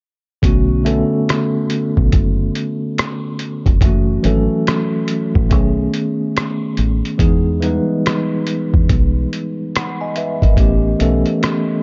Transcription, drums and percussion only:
0.43 kick, closed hi-hat
0.86 closed hi-hat
1.29 cross-stick, closed hi-hat
1.70 closed hi-hat
1.97 kick
2.12 kick, closed hi-hat
2.55 closed hi-hat
2.98 cross-stick, closed hi-hat
3.39 closed hi-hat
3.66 kick, closed hi-hat
3.81 kick, closed hi-hat
4.24 closed hi-hat
4.67 cross-stick, closed hi-hat
5.08 closed hi-hat
5.35 kick
5.51 kick, closed hi-hat
5.94 closed hi-hat
6.37 cross-stick, closed hi-hat
6.77 closed hi-hat
7.05 closed hi-hat
7.19 kick, closed hi-hat
7.62 closed hi-hat
8.06 cross-stick, closed hi-hat
8.47 closed hi-hat
8.74 kick
8.89 kick, closed hi-hat
9.33 closed hi-hat
9.76 cross-stick, closed hi-hat
10.16 closed hi-hat
10.42 kick, closed hi-hat
10.57 kick, closed hi-hat
11.00 closed hi-hat
11.26 closed hi-hat
11.43 cross-stick, closed hi-hat

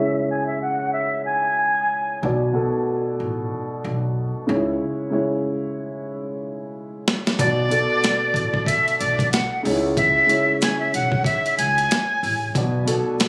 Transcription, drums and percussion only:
7.08 snare
7.27 snare
7.39 kick, closed hi-hat
7.71 closed hi-hat
8.04 snare, closed hi-hat
8.34 kick, closed hi-hat
8.54 kick
8.66 kick, closed hi-hat
8.88 closed hi-hat
9.01 closed hi-hat
9.19 kick, closed hi-hat
9.33 snare, closed hi-hat
9.65 open hi-hat
9.97 kick, closed hi-hat
10.29 closed hi-hat
10.62 snare, closed hi-hat
10.94 closed hi-hat
11.12 kick
11.24 kick, closed hi-hat
11.46 closed hi-hat
11.59 closed hi-hat
11.78 closed hi-hat
11.91 snare, closed hi-hat
12.24 open hi-hat
12.55 kick, closed hi-hat
12.88 closed hi-hat
13.20 snare, closed hi-hat

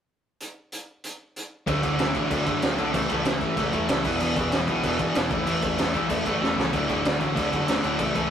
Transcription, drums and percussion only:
0.40 closed hi-hat
0.72 closed hi-hat
1.04 closed hi-hat
1.36 closed hi-hat
1.67 kick, crash
1.83 kick, crash
1.99 snare, crash
2.14 kick, crash
2.31 kick, crash
2.46 kick, crash
2.62 snare, crash
2.78 crash
2.94 kick, crash
3.09 kick, crash
3.25 snare, crash
3.41 kick, crash
3.57 kick, crash
3.73 kick, crash
3.88 snare, crash
4.04 kick, crash
4.20 crash
4.36 kick, crash
4.52 snare, crash
4.68 kick, crash
4.83 kick, crash
4.99 kick, crash
5.15 snare, crash
5.30 kick, crash
5.47 crash
5.62 kick, crash
5.78 snare, crash
5.94 kick, crash
6.10 kick, crash
6.25 kick, crash
6.43 snare
6.59 snare
6.73 kick, crash
6.89 kick, crash
7.05 snare, crash
7.20 kick, crash
7.36 kick, crash
7.52 kick, crash
7.68 snare, crash
7.84 crash
7.99 kick, crash
8.15 kick, crash

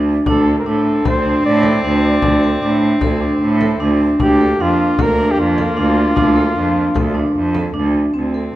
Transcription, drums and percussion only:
0.26 frame drum
0.86 frame drum
1.05 frame drum
1.63 frame drum
2.22 frame drum
2.82 frame drum
3.01 frame drum
3.61 frame drum
4.20 frame drum
4.99 frame drum
5.58 frame drum
6.17 frame drum
6.77 frame drum
6.95 frame drum
7.16 frame drum
7.35 frame drum
7.55 frame drum
7.94 frame drum

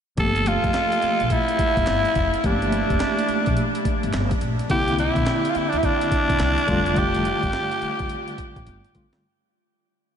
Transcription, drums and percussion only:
0.17 kick, closed hi-hat
0.36 closed hi-hat
0.46 closed hi-hat
0.64 kick, closed hi-hat
0.74 snare, clap, closed hi-hat
0.92 closed hi-hat
1.02 closed hi-hat
1.20 closed hi-hat
1.30 kick, closed hi-hat
1.48 closed hi-hat
1.59 kick, closed hi-hat
1.77 kick, closed hi-hat
1.87 snare, clap, closed hi-hat
2.05 closed hi-hat
2.15 kick, closed hi-hat
2.34 closed hi-hat
2.44 kick, closed hi-hat
2.62 closed hi-hat
2.72 closed hi-hat
2.90 kick, closed hi-hat
3.00 snare, clap, closed hi-hat
3.19 closed hi-hat
3.29 closed hi-hat
3.46 kick, closed hi-hat
3.57 closed hi-hat
3.75 closed hi-hat
3.85 kick, closed hi-hat
4.03 closed hi-hat
4.13 snare, clap, closed hi-hat
4.31 kick, closed hi-hat
4.41 closed hi-hat
4.59 closed hi-hat
4.70 kick, closed hi-hat
4.88 closed hi-hat
4.99 closed hi-hat
5.16 kick, closed hi-hat
5.26 snare, clap, closed hi-hat
5.45 closed hi-hat
5.55 closed hi-hat
5.73 closed hi-hat
5.83 kick, closed hi-hat
6.01 closed hi-hat
6.11 kick, closed hi-hat
6.30 kick, closed hi-hat
6.39 snare, clap, closed hi-hat
6.58 closed hi-hat
6.68 kick, closed hi-hat
6.86 closed hi-hat
6.96 kick, closed hi-hat
7.14 closed hi-hat
7.25 closed hi-hat
7.43 kick, closed hi-hat
7.53 snare, clap, closed hi-hat
7.72 closed hi-hat
7.82 closed hi-hat
7.99 kick, closed hi-hat
8.09 closed hi-hat
8.28 closed hi-hat
8.38 kick, closed hi-hat
8.56 kick, closed hi-hat
8.67 kick, closed hi-hat
8.84 closed hi-hat
8.95 kick, closed hi-hat
9.13 snare, closed hi-hat

